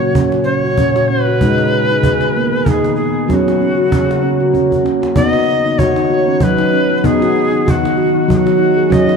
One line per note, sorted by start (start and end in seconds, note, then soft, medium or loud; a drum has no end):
0.00 1.37 A#2 medium
0.00 1.37 C#3 medium
0.00 0.74 F#3 medium
0.00 1.36 F#4 medium
0.00 0.16 F#4 medium
0.00 0.15 C#5 medium
0.15 0.33 C#4 medium
0.15 cajon bass medium
0.32 0.47 F#4 medium
0.32 cajon slap soft
0.44 1.09 C#5 loud
0.48 0.65 C#4 medium
0.63 0.78 F#4 medium
0.63 cajon slap soft
0.77 0.96 C#4 medium
0.77 cajon bass soft
0.96 1.09 F#4 medium
0.96 cajon slap soft
1.08 1.27 C#4 medium
1.08 2.66 B4 medium
1.27 1.41 F#4 medium
1.27 cajon slap soft
1.40 3.27 D#3 medium
1.40 2.63 G#3 medium
1.40 3.27 B3 medium
1.40 1.73 D#4 medium
1.40 3.27 G#4 medium
1.40 cajon bass soft
1.58 cajon slap soft
1.73 1.90 G#4 medium
1.90 2.04 D#4 medium
1.90 cajon slap soft
2.03 2.36 G#4 medium
2.03 cajon bass medium
2.21 cajon slap soft
2.36 2.53 A#3 medium
2.52 2.67 G#4 medium
2.52 cajon slap soft
2.65 2.98 D#4 medium
2.65 2.70 A#4 medium
2.65 cajon bass medium
2.69 2.95 G#4 medium
2.84 cajon slap soft
2.95 3.29 G#4 medium
3.00 3.30 G#4 medium
3.16 cajon slap soft
3.28 5.15 C#3 medium
3.28 4.50 F#3 medium
3.28 5.16 A#3 medium
3.28 3.47 C#4 medium
3.28 5.14 F#4 medium
3.28 3.35 G#4 medium
3.28 cajon bass medium
3.28 cajon slap soft
3.34 4.86 F#4 medium
3.48 3.61 F#4 medium
3.48 cajon slap soft
3.61 3.78 C#4 medium
3.77 3.91 F#4 medium
3.91 4.09 C#4 medium
3.91 cajon bass medium
4.09 4.23 F#4 medium
4.09 cajon slap soft
4.23 4.40 C#4 medium
4.23 cajon slap soft
4.40 4.54 F#4 medium
4.54 4.71 C#4 medium
4.54 cajon bass soft
4.71 4.85 F#4 medium
4.71 cajon bass soft
4.84 5.02 C#4 medium
4.84 cajon slap soft
5.02 5.16 F#4 medium
5.02 cajon slap soft
5.15 8.87 D#3 medium
5.15 8.87 B3 medium
5.15 6.38 B3 medium
5.15 5.34 D#4 medium
5.15 9.17 F#4 medium
5.15 5.29 D5 loud
5.15 cajon bass medium
5.29 5.80 D#5 loud
5.33 5.65 F#4 medium
5.33 cajon slap soft
5.65 5.79 D#4 medium
5.65 cajon slap soft
5.78 5.97 F#4 medium
5.78 6.45 C#5 medium
5.78 cajon bass medium
5.96 6.11 D#4 medium
5.96 cajon slap soft
6.10 6.28 F#4 medium
6.28 6.59 C#4 medium
6.40 7.00 F#3 medium
6.40 6.98 B4 medium
6.40 cajon bass medium
6.58 6.73 D#4 medium
6.58 cajon slap soft
6.73 6.91 C#4 medium
6.90 7.04 F#4 medium
6.90 cajon slap soft
6.98 7.08 B4 medium
7.04 8.25 B3 medium
7.04 7.21 D#4 medium
7.04 7.71 G#4 loud
7.04 cajon bass soft
7.21 7.53 F#4 medium
7.21 cajon slap soft
7.52 7.66 D#4 medium
7.52 cajon slap soft
7.66 7.84 F#4 medium
7.66 8.30 F#4 medium
7.66 cajon bass medium
7.83 7.97 D#4 medium
7.83 cajon slap soft
7.97 8.15 F#4 medium
8.15 8.46 D#4 medium
8.28 8.87 F#3 medium
8.28 cajon bass soft
8.33 8.94 F#4 medium
8.33 8.38 G#4 medium
8.46 8.60 F#4 medium
8.46 cajon slap soft
8.59 8.77 D#4 medium
8.77 8.91 G#4 medium
8.77 cajon slap soft
8.90 9.17 C#3 medium
8.90 9.17 F#3 loud
8.90 9.17 A#3 medium
8.90 9.08 C#4 medium
8.90 9.17 D#5 medium
8.90 cajon bass medium
9.07 9.17 D#4 medium
9.07 cajon slap soft